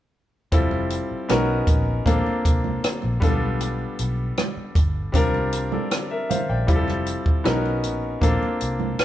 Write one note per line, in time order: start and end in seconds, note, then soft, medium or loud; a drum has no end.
0.52 0.99 F1 medium
0.52 1.29 G3 medium
0.52 1.29 C4 medium
0.52 1.29 E4 medium
0.52 1.30 F4 medium
0.52 1.30 A4 medium
0.52 kick medium
0.52 closed hi-hat medium
0.71 muted conga soft
0.90 closed hi-hat medium
1.11 muted fingered electric bass stroke soft
1.29 1.61 B1 medium
1.29 2.06 B3 medium
1.29 2.06 C#4 medium
1.29 2.06 D#4 medium
1.29 2.07 F#4 medium
1.29 2.07 A#4 medium
1.29 cross-stick medium
1.29 closed hi-hat medium
1.29 high conga medium
1.67 1.99 A#1 medium
1.67 kick medium
1.67 closed hi-hat medium
2.06 2.22 A#1 medium
2.06 3.21 A#3 medium
2.06 3.22 C4 medium
2.06 3.20 D4 medium
2.06 3.21 F4 medium
2.06 3.22 A4 medium
2.06 kick medium
2.06 closed hi-hat medium
2.06 high conga soft
2.06 low conga medium
2.26 muted fingered electric bass stroke soft
2.26 muted conga soft
2.45 2.76 C2 medium
2.45 kick medium
2.45 closed hi-hat medium
2.64 high conga medium
2.84 muted fingered electric bass stroke soft
2.84 cross-stick loud
2.84 closed hi-hat medium
3.02 3.19 A#1 medium
3.02 muted conga soft
3.20 3.84 B1 medium
3.20 5.09 G3 medium
3.20 5.10 B3 medium
3.20 5.10 D4 medium
3.20 5.11 F4 medium
3.20 5.11 A4 medium
3.20 kick medium
3.20 closed hi-hat medium
3.20 high conga medium
3.20 low conga medium
3.61 closed hi-hat medium
3.61 muted conga soft
3.99 4.30 B1 medium
3.99 closed hi-hat medium
4.37 cross-stick loud
4.37 closed hi-hat medium
4.37 muted conga soft
4.37 high conga medium
4.57 muted fingered electric bass stroke soft
4.75 5.07 G1 medium
4.75 kick medium
4.75 closed hi-hat medium
5.12 5.76 C2 loud
5.12 6.64 G3 medium
5.12 6.65 C4 medium
5.12 6.65 D4 medium
5.12 6.66 F4 medium
5.12 5.53 A#4 medium
5.12 kick medium
5.12 closed hi-hat medium
5.12 high conga soft
5.12 low conga medium
5.34 muted conga soft
5.53 closed hi-hat medium
5.72 6.09 A4 soft
5.72 6.09 D5 soft
5.72 high conga medium
5.91 cross-stick medium
5.91 closed hi-hat medium
5.91 muted conga soft
6.11 6.29 A#4 soft
6.11 6.29 E5 medium
6.30 6.48 C5 medium
6.30 6.48 F5 medium
6.30 muted fingered electric bass stroke soft
6.30 closed hi-hat medium
6.30 high conga medium
6.30 low conga medium
6.49 6.65 A#1 medium
6.49 6.86 D5 soft
6.49 6.86 G5 soft
6.67 7.15 F1 medium
6.67 7.45 G3 medium
6.67 7.45 C4 medium
6.67 7.45 E4 medium
6.67 7.45 F4 medium
6.67 6.75 G4 medium
6.67 kick medium
6.67 closed hi-hat medium
6.76 7.49 A4 medium
6.88 cross-stick soft
6.88 muted conga soft
7.06 closed hi-hat medium
7.26 muted fingered electric bass stroke soft
7.26 kick medium
7.44 7.84 B1 medium
7.44 8.22 B3 medium
7.44 8.22 C#4 medium
7.44 8.22 D#4 medium
7.44 8.22 F#4 medium
7.44 8.22 A#4 medium
7.44 cross-stick loud
7.44 closed hi-hat medium
7.44 high conga medium
7.66 muted conga soft
7.83 8.15 A#1 medium
7.83 closed hi-hat medium
8.21 8.37 A#1 medium
8.21 9.05 A#3 medium
8.21 9.05 C4 medium
8.21 9.05 D4 medium
8.21 9.05 F4 medium
8.21 9.05 A4 medium
8.21 kick medium
8.21 closed hi-hat medium
8.21 low conga medium
8.42 muted fingered electric bass stroke soft
8.42 muted conga soft
8.61 8.92 C2 medium
8.61 closed hi-hat medium
8.80 high conga medium
8.99 muted fingered electric bass stroke soft
8.99 cross-stick medium
8.99 closed hi-hat medium
8.99 muted conga soft